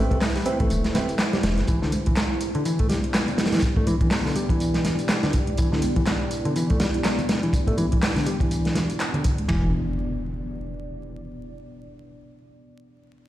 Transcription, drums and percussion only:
0.11 kick medium
0.11 closed hi-hat soft
0.21 snare loud
0.21 clap loud
0.21 closed hi-hat soft
0.21 open hi-hat medium
0.35 snare soft
0.35 closed hi-hat soft
0.45 closed hi-hat medium
0.60 kick medium
0.60 closed hi-hat soft
0.70 closed hi-hat soft
0.70 closed hi-hat medium
0.84 snare soft
0.84 closed hi-hat soft
0.94 snare soft
0.94 closed hi-hat medium
0.94 high conga medium
0.94 low conga medium
1.09 closed hi-hat soft
1.19 snare loud
1.19 clap loud
1.19 closed hi-hat soft
1.19 closed hi-hat medium
1.33 snare medium
1.33 closed hi-hat soft
1.33 low conga medium
1.43 snare loud
1.43 closed hi-hat medium
1.43 low conga medium
1.57 snare soft
1.57 closed hi-hat soft
1.57 high conga medium
1.67 kick loud
1.67 closed hi-hat medium
1.67 closed hi-hat soft
1.82 snare soft
1.92 closed hi-hat medium
1.92 high conga medium
2.06 kick medium
2.06 closed hi-hat soft
2.16 snare loud
2.16 clap loud
2.16 closed hi-hat soft
2.16 closed hi-hat medium
2.41 closed hi-hat medium
2.55 closed hi-hat soft
2.65 closed hi-hat soft
2.65 closed hi-hat medium
2.79 kick medium
2.79 closed hi-hat soft
2.89 snare soft
2.89 closed hi-hat medium
2.89 high conga medium
2.89 low conga medium
3.04 closed hi-hat soft
3.14 snare loud
3.14 clap loud
3.14 closed hi-hat soft
3.14 closed hi-hat medium
3.28 closed hi-hat soft
3.28 low conga medium
3.38 snare medium
3.38 closed hi-hat medium
3.38 low conga medium
3.45 snare medium
3.45 closed hi-hat medium
3.52 snare medium
3.52 closed hi-hat soft
3.52 closed hi-hat medium
3.52 high conga medium
3.58 snare medium
3.58 closed hi-hat medium
3.62 kick loud
3.62 closed hi-hat medium
3.62 closed hi-hat soft
3.76 kick loud
3.87 closed hi-hat medium
3.87 high conga medium
4.01 kick medium
4.01 closed hi-hat soft
4.11 snare loud
4.11 clap loud
4.11 closed hi-hat soft
4.11 open hi-hat medium
4.26 snare soft
4.36 closed hi-hat medium
4.49 kick medium
4.49 closed hi-hat soft
4.60 closed hi-hat soft
4.60 closed hi-hat medium
4.74 snare soft
4.74 closed hi-hat soft
4.84 snare soft
4.84 closed hi-hat medium
4.84 high conga medium
4.84 low conga medium
4.99 closed hi-hat soft
5.08 snare loud
5.08 clap loud
5.08 closed hi-hat loud
5.08 closed hi-hat soft
5.23 snare medium
5.23 closed hi-hat soft
5.23 low conga medium
5.33 kick loud
5.33 closed hi-hat medium
5.33 low conga medium
5.47 closed hi-hat soft
5.47 high conga medium
5.57 kick loud
5.57 closed hi-hat soft
5.57 closed hi-hat medium
5.73 snare soft
5.82 closed hi-hat medium
5.82 high conga medium
5.96 kick medium
5.96 closed hi-hat soft
6.06 snare loud
6.06 clap loud
6.06 closed hi-hat medium
6.06 closed hi-hat soft
6.31 closed hi-hat medium
6.45 closed hi-hat soft
6.56 closed hi-hat soft
6.56 closed hi-hat medium
6.70 kick medium
6.70 closed hi-hat soft
6.80 snare loud
6.80 closed hi-hat medium
6.80 high conga medium
6.80 low conga medium
6.94 closed hi-hat soft
7.04 snare loud
7.04 clap loud
7.04 closed hi-hat soft
7.04 closed hi-hat medium
7.18 closed hi-hat soft
7.18 low conga medium
7.29 snare loud
7.29 closed hi-hat medium
7.29 low conga medium
7.43 closed hi-hat soft
7.43 high conga medium
7.53 kick loud
7.53 closed hi-hat medium
7.53 closed hi-hat soft
7.67 kick medium
7.67 closed hi-hat soft
7.78 closed hi-hat medium
7.78 high conga medium
7.92 kick medium
7.92 closed hi-hat soft
8.02 snare loud
8.02 clap loud
8.02 closed hi-hat soft
8.02 open hi-hat medium
8.16 snare soft
8.16 closed hi-hat soft
8.26 closed hi-hat medium
8.40 kick loud
8.40 closed hi-hat soft
8.51 closed hi-hat soft
8.51 closed hi-hat loud
8.65 snare soft
8.65 closed hi-hat soft
8.75 snare soft
8.75 closed hi-hat medium
8.75 high conga medium
8.75 low conga loud
8.90 closed hi-hat soft
9.00 clap loud
9.00 closed hi-hat soft
9.14 closed hi-hat soft
9.14 low conga medium
9.24 kick loud
9.24 closed hi-hat medium
9.24 low conga medium
9.38 closed hi-hat soft
9.38 high conga medium
9.49 kick loud
9.49 ride bell medium

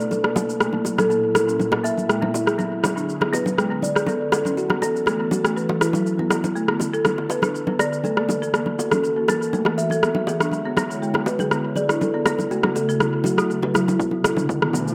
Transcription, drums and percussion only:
0.00 shaker soft
0.11 low bongo medium
0.11 shaker soft
0.24 cross-stick medium
0.36 high bongo loud
0.36 low bongo medium
0.36 shaker medium
0.49 shaker medium
0.60 cross-stick medium
0.60 shaker soft
0.73 low bongo medium
0.85 high bongo medium
0.85 shaker medium
0.98 cross-stick medium
0.98 low bongo medium
0.98 shaker soft
1.11 shaker soft
1.35 cross-stick medium
1.35 low bongo medium
1.35 shaker medium
1.49 shaker medium
1.60 low bongo medium
1.60 shaker soft
1.72 cross-stick medium
1.72 high bongo loud
1.85 shaker medium
1.97 low bongo medium
1.97 shaker medium
2.09 cross-stick medium
2.09 shaker soft
2.22 low bongo medium
2.34 high bongo medium
2.34 shaker medium
2.47 cross-stick medium
2.47 shaker soft
2.59 low bongo medium
2.59 shaker soft
2.84 cross-stick medium
2.84 high bongo medium
2.84 low bongo medium
2.84 shaker medium
2.97 shaker medium
3.09 shaker soft
3.21 cross-stick medium
3.21 high bongo medium
3.21 low bongo medium
3.33 high bongo medium
3.33 shaker medium
3.46 low bongo medium
3.46 shaker medium
3.58 cross-stick medium
3.58 shaker soft
3.82 low bongo medium
3.82 shaker medium
3.96 cross-stick medium
3.96 shaker soft
4.06 low bongo medium
4.06 shaker soft
4.32 cross-stick medium
4.32 high bongo loud
4.32 shaker medium
4.45 low bongo medium
4.45 shaker medium
4.58 shaker soft
4.70 cross-stick medium
4.70 low bongo medium
4.82 high bongo medium
4.82 shaker medium
4.96 shaker medium
5.06 cross-stick medium
5.06 low bongo medium
5.06 shaker soft
5.31 low bongo medium
5.31 shaker medium
5.45 cross-stick medium
5.45 shaker medium
5.57 shaker soft
5.69 high bongo medium
5.69 low bongo medium
5.81 cross-stick medium
5.81 shaker medium
5.93 low bongo medium
5.93 shaker soft
6.06 shaker soft
6.19 low bongo medium
6.30 cross-stick medium
6.30 high bongo medium
6.30 shaker medium
6.44 low bongo medium
6.44 shaker soft
6.56 shaker soft
6.68 cross-stick medium
6.80 high bongo medium
6.80 low bongo medium
6.80 shaker medium
6.94 shaker soft
7.05 cross-stick medium
7.05 low bongo medium
7.05 shaker soft
7.18 high bongo medium
7.30 high bongo medium
7.30 shaker medium
7.42 cross-stick medium
7.42 low bongo medium
7.42 shaker soft
7.55 shaker soft
7.67 low bongo medium
7.79 cross-stick medium
7.79 shaker medium
7.93 shaker soft
8.04 low bongo medium
8.04 shaker soft
8.17 cross-stick medium
8.29 high bongo medium
8.29 low bongo medium
8.29 shaker medium
8.43 shaker soft
8.54 cross-stick medium
8.54 shaker soft
8.66 low bongo medium
8.79 high bongo medium
8.79 shaker medium
8.91 cross-stick medium
8.91 low bongo medium
8.91 shaker soft
9.04 shaker soft
9.28 cross-stick medium
9.28 low bongo medium
9.28 shaker medium
9.42 shaker soft
9.53 low bongo medium
9.53 shaker soft
9.65 cross-stick medium
9.65 high bongo medium
9.79 shaker medium
9.90 low bongo medium
9.90 shaker soft
10.03 cross-stick medium
10.03 shaker soft
10.15 low bongo medium
10.27 high bongo loud
10.27 shaker medium
10.40 cross-stick medium
10.40 shaker soft
10.51 low bongo medium
10.51 shaker soft
10.77 cross-stick medium
10.77 high bongo medium
10.77 low bongo medium
10.77 shaker medium
10.91 shaker soft
11.03 shaker soft
11.14 cross-stick medium
11.14 high bongo medium
11.14 low bongo medium
11.26 high bongo loud
11.26 shaker medium
11.39 low bongo medium
11.39 shaker soft
11.51 cross-stick medium
11.51 shaker soft
11.76 low bongo medium
11.76 shaker medium
11.89 cross-stick medium
11.89 shaker soft
12.01 low bongo medium
12.01 shaker soft
12.26 cross-stick medium
12.26 high bongo medium
12.26 shaker medium
12.38 low bongo medium
12.38 shaker soft
12.52 shaker soft
12.63 cross-stick medium
12.63 low bongo medium
12.76 high bongo medium
12.76 shaker medium
12.89 shaker soft
13.00 cross-stick medium
13.00 low bongo medium
13.00 shaker soft
13.24 low bongo medium
13.24 shaker medium
13.38 cross-stick medium
13.38 shaker soft
13.51 shaker soft
13.62 high bongo medium
13.62 low bongo medium
13.75 cross-stick medium
13.75 shaker medium
13.88 low bongo medium
13.88 shaker soft
14.00 kick loud
14.00 shaker soft
14.11 low bongo medium
14.24 cross-stick loud
14.24 high bongo medium
14.24 shaker medium
14.37 low bongo medium
14.37 shaker medium
14.49 kick loud
14.49 shaker soft
14.62 cross-stick medium
14.73 high bongo medium
14.73 low bongo medium
14.73 shaker medium
14.88 shaker medium

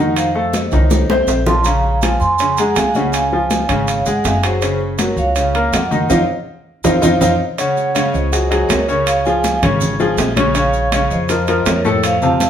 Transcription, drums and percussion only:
0.16 high conga soft
0.16 high timbale medium
0.16 maracas medium
0.35 high conga soft
0.54 high conga medium
0.54 high timbale medium
0.54 maracas medium
0.72 high timbale medium
0.72 maracas soft
0.90 high conga medium
0.90 high timbale medium
0.90 maracas medium
1.10 high conga medium
1.10 low timbale medium
1.28 low timbale medium
1.28 maracas medium
1.46 low conga medium
1.46 low timbale medium
1.46 maracas soft
1.64 high conga soft
1.64 high timbale medium
1.64 maracas medium
1.84 high conga soft
2.02 high conga medium
2.02 high timbale medium
2.02 maracas medium
2.21 high conga soft
2.21 maracas soft
2.39 high conga soft
2.39 high timbale medium
2.39 maracas medium
2.57 high conga soft
2.57 high timbale medium
2.57 maracas medium
2.76 high conga medium
2.76 high timbale medium
2.76 low timbale medium
2.76 maracas medium
2.95 high conga medium
2.95 maracas soft
3.13 high timbale medium
3.13 maracas medium
3.32 high conga soft
3.50 high conga loud
3.50 high timbale medium
3.50 maracas medium
3.69 high conga soft
3.69 high timbale medium
3.69 maracas soft
3.88 high conga soft
3.88 high timbale medium
3.88 maracas medium
4.06 high conga soft
4.06 maracas medium
4.25 high conga medium
4.25 high timbale medium
4.25 low timbale medium
4.25 maracas medium
4.43 high timbale medium
4.43 maracas soft
4.62 high conga soft
4.62 high timbale medium
4.62 maracas medium
4.81 high conga soft
4.98 high conga medium
4.98 high timbale medium
4.98 maracas medium
5.17 high conga soft
5.17 maracas soft
5.36 high conga soft
5.36 high timbale medium
5.36 maracas medium
5.55 high conga soft
5.55 high timbale medium
5.73 high conga medium
5.73 high timbale medium
5.73 low timbale medium
5.73 maracas medium
5.91 high conga medium
5.91 maracas soft
6.10 low conga medium
6.10 high timbale medium
6.10 maracas medium
6.84 low conga loud
6.84 high timbale loud
6.84 maracas loud
7.03 low conga medium
7.03 high timbale medium
7.03 maracas medium
7.21 low conga medium
7.21 high timbale medium
7.21 maracas medium
7.58 high conga soft
7.58 high timbale medium
7.58 maracas medium
7.77 high conga soft
7.77 maracas soft
7.95 high conga medium
7.95 high timbale medium
7.95 low timbale medium
7.95 maracas medium
8.14 maracas soft
8.33 high conga soft
8.33 high timbale medium
8.33 maracas medium
8.52 high conga soft
8.52 high timbale medium
8.52 maracas soft
8.70 high conga medium
8.70 high timbale loud
8.70 low timbale medium
8.70 maracas medium
8.89 maracas soft
9.07 high conga soft
9.07 high timbale medium
9.07 maracas medium
9.26 high conga soft
9.26 maracas soft
9.44 high conga medium
9.44 high timbale medium
9.44 low timbale medium
9.44 maracas medium
9.63 high conga soft
9.63 low conga medium
9.63 high timbale medium
9.63 maracas soft
9.81 high conga soft
9.81 low conga medium
9.81 maracas medium
10.00 high conga soft
10.00 maracas soft
10.18 high conga medium
10.18 high timbale medium
10.18 low timbale medium
10.18 maracas medium
10.36 high conga medium
10.36 high timbale medium
10.36 maracas soft
10.55 high conga soft
10.55 high timbale medium
10.55 maracas medium
10.73 high conga soft
10.73 maracas soft
10.92 high conga medium
10.92 high timbale medium
10.92 low timbale medium
10.92 maracas medium
11.11 maracas soft
11.29 high conga soft
11.29 high timbale medium
11.29 maracas medium
11.47 high conga soft
11.47 high timbale medium
11.47 maracas soft
11.66 high conga medium
11.66 high timbale medium
11.66 low timbale medium
11.66 maracas medium
11.85 high conga medium
11.85 maracas soft
12.04 high conga soft
12.04 high timbale medium
12.04 maracas medium
12.22 high conga soft
12.22 maracas soft
12.40 high conga medium
12.40 high timbale medium
12.40 low timbale medium
12.40 maracas medium

